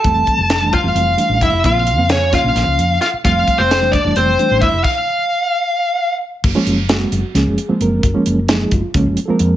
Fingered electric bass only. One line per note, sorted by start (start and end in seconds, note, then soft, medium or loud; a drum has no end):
0.04 0.23 F1 medium
0.27 muted fingered electric bass stroke soft
0.38 0.76 F1 medium
0.83 0.93 F1 medium
0.95 1.14 F1 medium
1.29 1.39 A1 medium
1.41 1.51 F1 medium
1.52 1.62 F1 medium
1.64 1.98 A#1 medium
1.98 2.36 F2 medium
2.44 2.54 A#1 medium
2.55 2.65 A#1 medium
2.67 2.77 C#2 medium
2.78 2.98 F2 medium
3.13 muted fingered electric bass stroke soft
3.25 3.43 F1 medium
3.59 3.97 F1 medium
4.04 4.14 F1 medium
4.16 4.35 F1 medium
4.51 4.60 A1 medium
4.62 4.71 F1 medium
4.73 4.83 F1 medium
6.44 6.53 F#1 medium
6.66 7.04 F#1 medium
7.12 7.22 F#1 medium
7.34 7.44 C#2 medium
7.46 7.56 F#1 medium
7.69 muted fingered electric bass stroke soft
7.80 8.00 F#1 medium
8.03 8.13 F#1 medium
8.26 8.64 F#1 medium
8.72 8.81 F#1 medium
8.94 9.04 C#2 loud
9.06 9.15 F#1 medium
9.29 muted fingered electric bass stroke soft
9.40 9.57 F2 medium